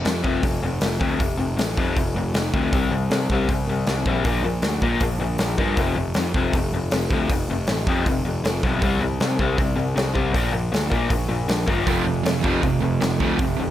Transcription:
0.05 F2 C3, snare, open hi-hat
0.23 F1 F2 C3 F3, kick
0.43 F1 F2 C3, kick, open hi-hat
0.63 F1 F2 C3
0.81 F1 F2 C3, snare, open hi-hat
1.00 D2 F2 C3 F3, kick
1.20 F1 F2 C3, kick, open hi-hat
1.38 F1 F2 C3
1.57 A1 F2 C3, snare, open hi-hat
1.77 F2 C3 F3, kick
1.97 F1 F2 C3, kick, open hi-hat
2.15 F1 F2 C3
2.34 F1 F2 C3, snare, open hi-hat
2.54 D2 F2 C3 F3, kick
2.73 C2 C3 G3 C4, kick, open hi-hat
2.91 C2 C3 G3
3.10 C3 G3, snare, open hi-hat
3.30 C2 C3 G3 C4, kick
3.49 C2 C3 G3, kick, open hi-hat
3.68 C2 C3 G3
3.87 C2 C3 G3, snare, open hi-hat
4.06 A#1 C3 G3 C4, kick
4.24 A#1 A#2 F3 A#3, kick, open hi-hat
4.43 A#1 A#2 F3
4.62 D2 A#2 F3, snare, open hi-hat
4.82 A#2 F3 A#3, kick
5.00 A#1 A#2 F3, kick, open hi-hat
5.20 A#1 A#2 F3
5.38 A#1 A#2 F3, snare, open hi-hat
5.58 G2 A#2 F3 A#3, kick
5.76 F1 F2 C3 F3, kick, open hi-hat
5.96 F1 F2 C3
6.14 F2 C3, snare, open hi-hat
6.34 F1 F2 C3 F3, kick
6.53 F1 F2 C3, kick, open hi-hat
6.73 F1 F2 C3
6.91 F1 F2 C3, snare, open hi-hat
7.11 D2 F2 C3 F3, kick
7.29 F1 F2 C3, kick, open hi-hat
7.50 F1 F2 C3
7.67 A1 F2 C3, snare, open hi-hat
7.87 F2 C3 F3, kick
8.06 F1 F2 C3, kick, open hi-hat
8.25 F1 F2 C3
8.44 F1 F2 C3, snare, open hi-hat
8.63 B1 F2 C3 F3, kick
8.82 C2 C3 G3 C4, kick, open hi-hat
9.00 C2 C3 G3
9.20 C3 G3, snare, open hi-hat
9.39 C2 C3 G3 C4, kick
9.58 C2 C3 G3, kick, open hi-hat
9.76 C2 C3 G3
9.96 C2 C3 G3, snare, open hi-hat
10.14 C2 C3 G3 C4, kick
10.33 A#1 A#2 F3 A#3, kick, open hi-hat
10.53 A#1 A#2 F3
10.72 D2 A#2 F3, snare, open hi-hat
10.90 A#2 F3 A#3, kick
11.10 A#1 A#2 F3, kick, open hi-hat
11.29 A#1 A#2 F3
11.48 A#1 A#2 F3, snare, open hi-hat
11.67 G1 A#2 F3 A#3, kick
11.86 F1 F2 C3 F3, kick, open hi-hat
12.05 F1 F2 C3
12.25 F2 C3, snare, open hi-hat
12.44 F1 F2 C3 F3, kick
12.63 F1 F2 C3, kick, open hi-hat
12.82 F1 F2 C3
13.01 F1 F2 C3, snare, open hi-hat
13.20 D2 F2 C3 F3, kick
13.39 F1 F2 C3, kick, open hi-hat
13.59 F1 F2 C3

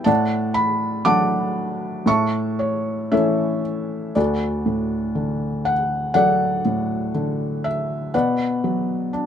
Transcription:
0.04 A2 D5 F#5 A5
0.54 B5
1.05 F#3 A3 D4 F#5 A5 D6
2.06 A2 E5 A5 C#6
2.59 C#5
3.11 E3 A3 C#4 A4 C#5 E5
4.15 D2 F#4 A4 D5
4.66 A2
5.15 D3
5.65 F#5
6.14 F#3 A4 D5 F#5
6.65 A2
7.14 D3
7.64 E5
8.14 B2 B4 D5 F#5
8.64 F#3
9.13 D4

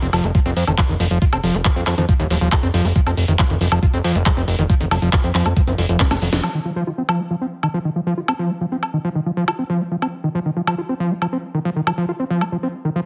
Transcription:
0.02 F1 C4, closed hi-hat
0.13 F1 F3, open hi-hat, high woodblock
0.24 F1 C4, closed hi-hat
0.35 F3, kick, closed hi-hat
0.46 F1 C4, closed hi-hat
0.57 F2, open hi-hat
0.67 F1 D#3, closed hi-hat, high woodblock
0.78 F3, kick, clap, closed hi-hat
0.89 F1 D#3, closed hi-hat
1.00 F1 F3, open hi-hat
1.11 F1 F3, closed hi-hat
1.22 F4, kick, closed hi-hat
1.33 F1 C4, closed hi-hat, high woodblock
1.43 F1 F3, open hi-hat
1.54 F1 C4, closed hi-hat
1.65 F3, kick, clap, closed hi-hat
1.76 F2 C4, closed hi-hat
1.87 F2, clap, open hi-hat, high woodblock
1.98 F2 D#3, closed hi-hat
2.09 F3, kick, closed hi-hat
2.20 D#1 D#3, closed hi-hat
2.30 D#1 F3, open hi-hat
2.41 D#1 F3, closed hi-hat
2.52 F4, kick, clap, closed hi-hat, high woodblock
2.63 F1 C4, closed hi-hat
2.74 F1 F3, open hi-hat
2.85 F1 C4, open hi-hat
2.96 F3, kick, closed hi-hat
3.07 F1 C4, closed hi-hat, high woodblock
3.17 F1, open hi-hat
3.28 F1 D#3, closed hi-hat
3.39 F3, kick, clap, closed hi-hat
3.50 F1 D#3, closed hi-hat
3.61 F1 F3, open hi-hat
3.72 F1 F3, high woodblock
3.83 F4, kick, closed hi-hat
3.94 F1 C4, closed hi-hat
4.04 F2 F3, open hi-hat
4.15 F1 C4, closed hi-hat
4.26 F3, kick, clap, closed hi-hat, high woodblock
4.37 F1 C4, closed hi-hat
4.48 F1, open hi-hat
4.59 F1 D#3, closed hi-hat
4.70 F3, kick, closed hi-hat
4.80 F1 D#3, closed hi-hat
4.91 F1 F3, open hi-hat, high woodblock
5.02 F1 F3, closed hi-hat
5.13 F4, kick, clap, closed hi-hat
5.24 F2 C4, closed hi-hat
5.35 F2 F3, clap, open hi-hat
5.46 F2 C4, closed hi-hat, high woodblock
5.57 F3, kick, closed hi-hat
5.67 F#1 C4, closed hi-hat
5.78 F1 F3, open hi-hat
5.89 F1 F3, closed hi-hat
6.00 D#3, kick, snare, clap, closed hi-hat
6.11 F1 A3, snare, closed hi-hat, high woodblock
6.22 F1 F3, open hi-hat
6.33 F1 F3, snare, open hi-hat
6.44 F3, high woodblock
6.54 D#3
6.65 F3
6.76 F3
6.87 F4
6.98 C4
7.09 F3, high woodblock
7.20 C4
7.30 F3
7.41 C4
7.63 D#3, high woodblock
7.74 F3
7.85 D#3
7.96 F3
8.07 F3
8.17 F4
8.28 C4, high woodblock
8.39 F3
8.50 C4
8.61 F3
8.72 C4
8.83 high woodblock
8.94 D#3
9.04 F3
9.15 D#3
9.26 F3
9.37 F3
9.48 F4, high woodblock
9.59 C4
9.70 F3
9.80 C4
9.91 F3
10.02 C4, high woodblock
10.24 D#3
10.35 F3
10.46 D#3
10.56 F3
10.67 F3, high woodblock
10.78 F4
10.89 C4
11.00 F3
11.11 C4
11.22 F3, high woodblock
11.33 C4
11.54 D#3
11.65 F3
11.76 D#3
11.87 F3, high woodblock
11.98 F3
12.09 F4
12.20 C4
12.30 F3
12.41 C4, high woodblock
12.52 F3
12.63 C4
12.85 D#3
12.96 F3

